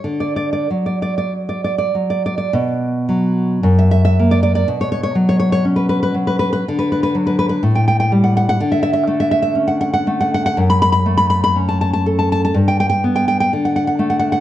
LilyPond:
\new Staff \with { instrumentName = "Nylon-string guitar" } { \time 2/4 \key d \major \tempo 4 = 61 << { r32 d''32 d''32 d''32 r32 d''32 d''32 d''32 r32 d''32 d''32 d''32 r32 d''32 d''32 d''32 | \key b \minor r4 r32 e''32 e''32 e''32 r32 d''32 d''32 d''32 | r32 cis''32 cis''32 cis''32 r32 cis''32 cis''32 cis''32 r32 b'32 b'32 b'32 r32 b'32 b'32 b'32 | r32 b'32 b'32 b'32 r32 b'32 b'32 b'32 r32 g''32 g''32 g''32 r32 fis''32 fis''32 fis''32 |
r32 e''32 e''32 e''32 r32 e''32 e''32 e''32 r32 fis''32 fis''32 fis''32 r32 fis''32 fis''32 fis''32 | \key fis \phrygian r32 b''32 b''32 b''32 r32 b''32 b''32 b''32 r32 a''32 a''32 a''32 r32 a''32 a''32 a''32 | r32 g''32 g''32 g''32 r32 g''32 g''32 g''32 r32 fis''32 fis''32 fis''32 r32 fis''32 fis''32 fis''32 | } \\ { d8 fis4 fis8 | b,8 fis8 fis,8 ais8 | b,8 fis8 cis'8 fis8 | d8 fis8 a,8 g8 |
d8 a8 cis'8 a8 | fis,8 a8 cis'8 a'8 | g,8 b8 d8 a8 | } >> }